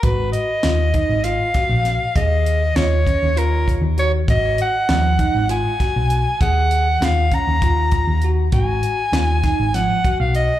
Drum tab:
HH |xxxxxxx|xxxxxxx|xxxxxxx|xxxxxxx|
SD |--o--oo|--o----|--o--o-|--o----|
BD |o--o-o-|o--o-o-|o--o-o-|o--ooo-|

HH |xxxxxxx|
SD |--ooo--|
BD |o--o-o-|